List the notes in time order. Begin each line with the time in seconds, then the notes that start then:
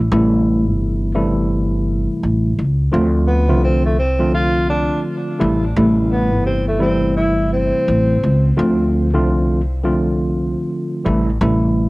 0.12 A1 C3 E3 G3 A3 E4
0.68 G1
1.14 C3 E3 G3 A3 E4
2.23 A1
2.59 C#2
2.92 D2 D3 F3 A3 C4 F4
3.28 B3
3.48 C2 D3 F3 A3 C4 F4
3.63 C4
3.85 A3
3.99 C4
4.19 D3 F3 A3 C4 F4
4.34 F4
4.70 D4
5.39 A1 C3 E3 G3 A3 E4
5.76 A1 C3 E3 G3 A3 E4
6.11 B3
6.33 G1
6.46 C4
6.68 A3
6.79 C3 E3 G3 A3 C4 E4
7.17 E4
7.52 C4
7.88 A1
8.23 C#2
8.57 D2 D3 F3 A3 C4 F4
9.14 C2 D3 F3 A3 C4 F4
9.84 D3 F3 A3 C4 F4
11.04 A1 C3 E3 G3 A3 E4
11.41 A1 C3 E3 G3 A3 E4